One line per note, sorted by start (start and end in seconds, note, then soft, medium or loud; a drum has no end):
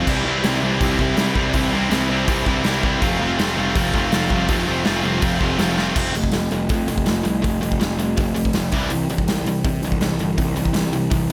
0.07 0.23 C2 medium
0.07 0.25 C3 medium
0.07 0.26 E3 medium
0.07 0.27 G3 medium
0.07 0.27 C4 medium
0.07 0.28 E4 loud
0.07 kick loud
0.07 crash medium
0.25 0.41 C2 medium
0.25 0.42 C3 medium
0.25 0.43 E3 medium
0.25 0.44 G3 medium
0.25 0.44 C4 medium
0.25 0.45 E4 medium
0.43 0.59 C2 medium
0.43 0.62 C3 medium
0.43 0.62 E3 medium
0.43 0.63 G3 medium
0.43 0.63 C4 loud
0.43 0.64 E4 loud
0.43 snare loud
0.43 open hi-hat medium
0.62 0.77 C2 medium
0.62 0.79 C3 medium
0.62 0.79 E3 medium
0.62 0.80 G3 medium
0.62 0.81 C4 medium
0.62 0.81 E4 medium
0.80 0.96 C2 medium
0.80 0.97 C3 loud
0.80 0.98 E3 medium
0.80 0.99 G3 medium
0.80 1.00 C4 loud
0.80 1.00 E4 loud
0.80 kick loud
0.80 open hi-hat medium
0.98 1.15 C2 medium
0.98 1.16 C3 medium
0.98 1.17 E3 medium
0.98 1.17 G3 medium
0.98 1.18 C4 medium
0.98 1.18 E4 loud
0.98 kick medium
1.17 1.33 C2 medium
1.17 1.34 C3 medium
1.17 1.35 E3 loud
1.17 1.35 G3 medium
1.17 1.37 C4 medium
1.17 1.36 E4 loud
1.17 snare loud
1.17 open hi-hat medium
1.35 1.51 C2 loud
1.35 1.53 C3 medium
1.35 1.53 E3 medium
1.35 1.54 G3 medium
1.35 1.55 C4 medium
1.35 1.55 E4 medium
1.35 kick medium
1.53 1.70 C2 medium
1.53 1.70 C3 medium
1.53 1.71 E3 loud
1.53 1.71 G3 medium
1.53 1.73 C4 medium
1.53 1.72 E4 medium
1.53 kick loud
1.53 open hi-hat medium
1.71 1.88 C2 medium
1.71 1.89 C3 medium
1.71 1.89 E3 medium
1.71 1.90 G3 medium
1.71 1.91 C4 loud
1.71 1.91 E4 loud
1.90 2.06 C2 medium
1.90 2.08 C3 loud
1.90 2.08 E3 medium
1.90 2.09 G3 medium
1.90 2.10 C4 loud
1.90 2.10 E4 loud
1.90 snare loud
1.90 open hi-hat medium
2.09 2.25 C2 medium
2.09 2.26 C3 medium
2.09 2.27 E3 medium
2.09 2.27 G3 medium
2.09 2.29 C4 loud
2.09 2.28 E4 loud
2.27 2.44 C2 loud
2.27 2.44 C3 loud
2.27 2.45 E3 loud
2.27 2.46 G3 loud
2.27 2.47 C4 loud
2.27 2.47 E4 loud
2.27 kick loud
2.27 open hi-hat medium
2.46 2.62 C2 medium
2.46 2.63 C3 medium
2.46 2.64 E3 medium
2.46 2.64 G3 medium
2.46 2.66 C4 medium
2.46 2.65 E4 medium
2.46 kick medium
2.64 2.95 C2 loud
2.64 2.81 C3 medium
2.64 2.82 E3 medium
2.64 2.83 G3 loud
2.64 2.84 C4 loud
2.64 2.84 E4 loud
2.64 snare loud
2.64 open hi-hat medium
2.82 3.00 C3 medium
2.82 3.00 E3 medium
2.82 3.01 G3 medium
2.82 3.02 C4 medium
2.82 3.01 E4 medium
2.82 kick medium
3.01 3.18 F1 medium
3.01 3.20 F2 loud
3.01 3.20 C3 loud
3.01 3.20 F3 loud
3.01 3.20 A3 loud
3.01 3.21 C4 medium
3.01 3.21 F4 loud
3.01 kick loud
3.01 open hi-hat soft
3.20 3.36 F1 medium
3.20 3.38 F2 medium
3.20 3.38 C3 medium
3.20 3.37 F3 medium
3.20 3.38 A3 loud
3.20 3.39 C4 loud
3.20 3.39 F4 medium
3.37 3.54 F1 medium
3.37 3.58 F2 loud
3.37 3.57 C3 loud
3.37 3.55 F3 medium
3.37 3.56 A3 medium
3.37 3.57 C4 medium
3.37 3.58 F4 loud
3.37 snare loud
3.37 open hi-hat medium
3.56 3.72 F1 loud
3.56 3.77 F2 medium
3.56 3.76 C3 medium
3.56 3.74 F3 medium
3.56 3.75 A3 loud
3.56 3.75 C4 medium
3.56 3.76 F4 loud
3.75 3.91 F1 medium
3.75 3.94 F2 medium
3.75 3.94 C3 loud
3.75 3.93 F3 medium
3.75 3.94 A3 loud
3.75 3.94 C4 loud
3.75 3.94 F4 loud
3.75 kick loud
3.75 open hi-hat medium
3.94 4.09 F1 loud
3.94 4.12 F2 medium
3.94 4.12 C3 medium
3.94 4.12 F3 medium
3.94 4.13 A3 medium
3.94 4.13 C4 medium
3.94 4.14 F4 medium
3.94 kick medium
4.12 4.28 F1 loud
4.12 4.31 F2 medium
4.12 4.31 C3 medium
4.12 4.30 F3 loud
4.12 4.31 A3 loud
4.12 4.31 C4 loud
4.12 4.32 F4 loud
4.12 snare loud
4.12 open hi-hat medium
4.30 4.46 F1 loud
4.30 4.49 F2 medium
4.30 4.50 C3 medium
4.30 4.47 F3 medium
4.30 4.47 A3 medium
4.30 4.48 C4 medium
4.30 4.49 F4 medium
4.30 kick loud
4.48 4.65 F1 medium
4.48 4.66 F2 medium
4.48 4.68 C3 loud
4.48 4.65 F3 medium
4.48 4.66 A3 medium
4.48 4.67 C4 medium
4.48 4.67 F4 medium
4.48 kick loud
4.48 open hi-hat medium
4.66 4.83 F1 medium
4.66 4.85 F2 medium
4.66 4.85 C3 medium
4.66 4.84 F3 medium
4.66 4.85 A3 medium
4.66 4.85 C4 medium
4.66 4.86 F4 medium
4.85 5.01 F1 medium
4.85 5.03 F2 medium
4.85 5.04 C3 medium
4.85 5.02 F3 medium
4.85 5.02 A3 loud
4.85 5.03 C4 medium
4.85 5.04 F4 loud
4.85 snare loud
4.85 open hi-hat medium
5.03 5.19 F1 medium
5.03 5.21 F2 medium
5.03 5.22 C3 medium
5.03 5.20 F3 medium
5.03 5.20 A3 medium
5.03 5.21 C4 loud
5.03 5.22 F4 medium
5.21 5.38 F1 medium
5.21 5.40 F2 medium
5.21 5.41 C3 loud
5.21 5.38 F3 medium
5.21 5.39 A3 medium
5.21 5.40 C4 loud
5.21 5.41 F4 loud
5.21 kick loud
5.21 open hi-hat medium
5.39 5.56 F1 medium
5.39 5.58 F2 medium
5.39 5.59 C3 medium
5.39 5.56 F3 medium
5.39 5.57 A3 loud
5.39 5.58 C4 medium
5.39 5.58 F4 medium
5.39 kick loud
5.57 5.90 F1 loud
5.57 5.76 F2 medium
5.57 5.77 C3 loud
5.57 5.75 F3 loud
5.57 5.76 A3 medium
5.57 5.77 C4 loud
5.57 5.77 F4 loud
5.57 snare loud
5.57 open hi-hat medium
5.76 5.95 F2 medium
5.76 5.95 C3 medium
5.76 5.94 F3 medium
5.76 5.95 A3 medium
5.76 5.95 C4 medium
5.76 5.95 F4 medium
5.76 snare medium
5.96 6.13 F1 medium
5.96 6.13 F3 medium
5.96 6.14 A3 medium
5.96 6.14 C4 loud
5.96 kick loud
5.96 crash loud
6.15 6.32 F1 medium
6.15 6.32 F3 medium
6.15 6.32 A3 medium
6.15 open hi-hat soft
6.24 kick medium
6.32 6.50 F1 medium
6.32 6.50 F3 medium
6.32 6.50 A3 medium
6.32 snare loud
6.32 open hi-hat medium
6.51 6.69 F1 medium
6.51 6.68 F3 medium
6.51 6.68 A3 medium
6.51 open hi-hat medium
6.69 6.87 F2 medium
6.69 6.86 F3 medium
6.69 6.86 A3 medium
6.69 kick loud
6.69 open hi-hat medium
6.88 7.06 F1 medium
6.88 7.05 F3 medium
6.88 7.05 A3 medium
6.88 open hi-hat medium
6.98 kick medium
7.06 7.24 F1 loud
7.06 7.22 F3 medium
7.06 7.23 A3 medium
7.06 snare loud
7.06 open hi-hat medium
7.23 7.43 C2 medium
7.23 7.41 F3 medium
7.23 7.41 A3 medium
7.23 open hi-hat medium
7.42 7.61 F1 medium
7.42 7.59 F3 medium
7.42 7.59 A3 medium
7.42 kick loud
7.42 open hi-hat medium
7.61 7.79 F1 medium
7.61 7.78 F3 medium
7.61 7.78 A3 medium
7.61 open hi-hat medium
7.72 kick medium
7.80 8.14 F1 medium
7.80 7.97 F3 medium
7.80 7.97 A3 medium
7.80 snare loud
7.80 open hi-hat medium
7.99 8.15 F3 medium
7.99 8.15 A3 medium
7.99 open hi-hat medium
8.17 8.51 F1 medium
8.17 8.33 F3 medium
8.17 8.33 A3 medium
8.17 kick loud
8.17 open hi-hat medium
8.34 8.52 F3 medium
8.34 8.52 A3 medium
8.34 open hi-hat medium
8.45 kick medium
8.53 8.71 F1 loud
8.53 8.71 F3 medium
8.53 8.71 A3 medium
8.53 snare loud
8.53 open hi-hat medium
8.72 8.90 C2 medium
8.72 8.90 C3 medium
8.72 8.90 E3 loud
8.72 8.91 G3 loud
8.72 kick loud
8.72 open hi-hat medium
8.90 9.08 C2 medium
8.90 9.08 C3 medium
8.90 9.08 E3 medium
8.90 open hi-hat medium
9.10 9.26 C2 medium
9.10 9.26 C3 medium
9.10 9.26 E3 medium
9.10 open hi-hat soft
9.18 kick medium
9.28 9.45 C2 medium
9.28 9.45 C3 medium
9.28 9.45 E3 medium
9.28 snare loud
9.28 open hi-hat medium
9.46 9.63 C2 medium
9.46 9.63 C3 medium
9.46 9.63 E3 medium
9.46 open hi-hat medium
9.65 9.81 C3 medium
9.65 9.81 E3 medium
9.65 kick loud
9.65 open hi-hat medium
9.82 9.99 C2 medium
9.82 10.00 C3 medium
9.82 10.00 E3 medium
9.82 open hi-hat medium
9.92 kick medium
10.00 10.18 C2 loud
10.00 10.18 C3 medium
10.00 10.18 E3 medium
10.00 snare loud
10.00 open hi-hat medium
10.19 10.36 G1 medium
10.19 10.37 C3 medium
10.19 10.37 E3 medium
10.19 open hi-hat medium
10.38 10.55 C2 medium
10.38 10.54 C3 medium
10.38 10.55 E3 medium
10.38 kick loud
10.38 open hi-hat medium
10.56 10.73 C2 medium
10.56 10.72 C3 medium
10.56 10.73 E3 medium
10.56 open hi-hat medium
10.65 kick medium
10.73 11.09 C2 medium
10.73 10.91 C3 medium
10.73 10.91 E3 medium
10.73 snare loud
10.73 open hi-hat medium
10.93 11.09 C3 medium
10.93 11.10 E3 medium
10.93 open hi-hat medium
11.10 11.32 C2 medium
11.10 11.28 C3 medium
11.10 11.28 E3 medium
11.10 kick loud
11.10 open hi-hat medium